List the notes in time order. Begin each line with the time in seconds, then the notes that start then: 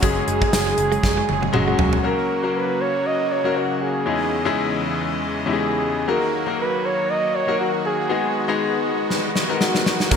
Already playing: C#3 F#3 G#3 C#4 F#4
0.02 F#1 F#3 G#3 C#4 G#4, kick, closed hi-hat
0.28 F#1, muted clean electric guitar stroke, closed hi-hat
0.42 G#3, kick
0.53 F#1, snare, closed hi-hat, tambourine
0.67 F#3
0.78 F#1, muted clean electric guitar stroke, closed hi-hat
0.92 G#3, closed hi-hat
1.03 F#1, kick, snare
1.17 G#3
1.29 F#1, muted clean electric guitar stroke, high tom
1.43 F#3, high tom
1.53 F#1 F#3 G#3 C#4 F#4, muted clean electric guitar stroke, mid tom
1.68 G#3
1.79 E1 F#3, floor tom
1.93 floor tom
2.03 C#3 F#3 A#3 C#4 F#4 A#4
2.43 F#3 A#3 C#4 F#4 A#4
2.56 B4
2.81 C#5
3.07 D#5
3.32 C#5
3.44 F#3 A#3 C#4 F#4 A#4
3.57 F#4
3.82 G#4
4.06 E2 E3 G#3 C#4 D#4 E4 G#4 D#5
4.45 E2 G#3 C#4 D#4 E4 G#4
5.46 E2 G#3 C#4 D#4 E4 G4
5.53 G#4
5.60 G#4
6.07 D#3 F#3 A#3 D#4 F#4 A#4
6.46 F#3 A#3 D#4 F#4 A#4
6.60 B4
6.86 C#5
7.10 D#5
7.35 C#5
7.47 F#3 A#3 D#4 F#4 A#4
7.60 F#4
7.86 G#4
8.09 G#3 B3 D#4 F#4 G#4
8.48 G#3 B3 D#4 F#4 G#4
9.10 snare
9.36 snare
9.49 G#3 B3 D#4 F#4 A#4
9.61 F#4, snare
9.75 snare
9.86 snare
10.00 snare
10.10 F#1 C#3 F#3 A#3 C#4 F#4 A#4, kick, closed hi-hat